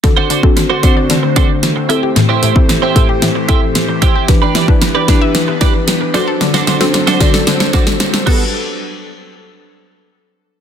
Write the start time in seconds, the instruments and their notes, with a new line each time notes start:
0.04 analog synth pad D3 A3 C4 F#4 C5, synth arpeggio sound D3, synth pluck C4 D4 F#4 A4, muted clean electric guitar stroke, kick, snare, closed hi-hat
0.17 clean electric guitar D4 F#4 C5
0.30 synth arpeggio sound D3, clean electric guitar D4 F#4 C5, closed hi-hat
0.43 synth arpeggio sound C4, synth pluck C4 D4 F#4 A4, muted clean electric guitar stroke, kick
0.56 muted clean electric guitar stroke, snare, closed hi-hat
0.70 clean electric guitar D4 F#4 C5, synth arpeggio sound F#4
0.83 synth arpeggio sound D3, synth pluck C4 D4 F#4 A4, clean electric guitar D4 F#4 C5, kick, closed hi-hat
0.96 synth arpeggio sound D5, muted clean electric guitar stroke
1.10 synth arpeggio sound D3, snare, closed hi-hat
1.23 muted clean electric guitar stroke
1.36 synth arpeggio sound D3, synth pluck C4 D4 F#4 A4, clean electric guitar D4 F#4 C5, kick, closed hi-hat
1.49 muted clean electric guitar stroke
1.63 muted clean electric guitar stroke, snare, closed hi-hat
1.76 muted clean electric guitar stroke
1.89 analog synth pad E3 G4 C5, synth pluck C4 E4 G4 A4, clean electric guitar E4 G4 C5, closed hi-hat
2.02 synth arpeggio sound G4, muted clean electric guitar stroke
2.16 synth arpeggio sound A2, muted clean electric guitar stroke, snare, closed hi-hat
2.29 clean electric guitar E4 G4 C5
2.42 synth arpeggio sound A2, clean electric guitar E4 G4 C5, closed hi-hat
2.56 synth arpeggio sound A3, synth pluck C4 E4 G4 A4, muted clean electric guitar stroke, kick
2.69 muted clean electric guitar stroke, snare, closed hi-hat
2.82 synth arpeggio sound C4, clean electric guitar E4 G4 C5
2.95 synth arpeggio sound A2, synth pluck C4 E4 G4 A4, clean electric guitar E4 G4 C5, kick, closed hi-hat
3.09 synth arpeggio sound G4, muted clean electric guitar stroke
3.22 synth arpeggio sound A2, snare, closed hi-hat
3.35 muted clean electric guitar stroke
3.49 synth pluck C4 E4 G4 A4, clean electric guitar E4 G4 C5, kick, closed hi-hat
3.62 muted clean electric guitar stroke
3.75 muted clean electric guitar stroke, snare, closed hi-hat
3.89 muted clean electric guitar stroke
4.02 clean electric guitar E4 G4 C5, kick, closed hi-hat
4.15 clean electric guitar E4 G4 C5, synth arpeggio sound G4
4.28 synth arpeggio sound E3, analog synth pad B3 D4 B4, synth pluck D4 E4 G4 B4, muted clean electric guitar stroke, kick, snare, closed hi-hat
4.42 clean electric guitar D4 G4 B4
4.55 synth arpeggio sound E3, clean electric guitar D4 G4 B4, snare, closed hi-hat
4.68 synth pluck D4 E4 G4 B4, synth arpeggio sound D4, muted clean electric guitar stroke, kick
4.81 muted clean electric guitar stroke, snare, closed hi-hat
4.95 clean electric guitar D4 G4 B4, synth arpeggio sound G4
5.08 synth arpeggio sound E3, clean electric guitar D4 G4 B4, synth pluck D4 E4 G4 B4, kick, snare, closed hi-hat
5.21 synth arpeggio sound E5, muted clean electric guitar stroke
5.35 synth arpeggio sound E3, snare, closed hi-hat
5.48 muted clean electric guitar stroke
5.61 synth arpeggio sound E3, synth pluck D4 E4 G4 B4, clean electric guitar D4 G4 B4, kick, snare, closed hi-hat
5.75 muted clean electric guitar stroke
5.88 muted clean electric guitar stroke, snare, closed hi-hat
6.01 muted clean electric guitar stroke
6.14 analog synth pad F#3 C4 A4 C5, synth pluck D4 F#4 A4 C5, clean electric guitar D4 F#4 C5, snare, closed hi-hat
6.27 synth arpeggio sound A4, muted clean electric guitar stroke
6.41 synth arpeggio sound D3, muted clean electric guitar stroke, snare, closed hi-hat
6.54 clean electric guitar D4 F#4 C5, snare
6.67 synth arpeggio sound D3, clean electric guitar D4 F#4 C5, snare, closed hi-hat
6.80 synth arpeggio sound C4, synth pluck D4 F#4 A4 C5, muted clean electric guitar stroke, snare
6.94 muted clean electric guitar stroke, snare, closed hi-hat
7.07 synth arpeggio sound D4, clean electric guitar D4 F#4 C5, snare
7.20 synth arpeggio sound D3, clean electric guitar D4 F#4 C5, synth pluck D4 F#4 A4 D5, kick, snare, closed hi-hat
7.34 synth arpeggio sound A4, muted clean electric guitar stroke, snare
7.47 synth arpeggio sound D3, snare, closed hi-hat
7.60 muted clean electric guitar stroke, snare
7.73 synth arpeggio sound D3, clean electric guitar D4 F#4 C5, synth pluck D4 F#4 A4 C5, kick, snare, closed hi-hat
7.87 muted clean electric guitar stroke, snare
8.00 muted clean electric guitar stroke, snare, closed hi-hat
8.13 muted clean electric guitar stroke, snare
8.26 synth arpeggio sound G3 B3 F#4 A4, clean electric guitar B3 F#4 A4, synth pluck F#4 G4 A4 B4, kick, crash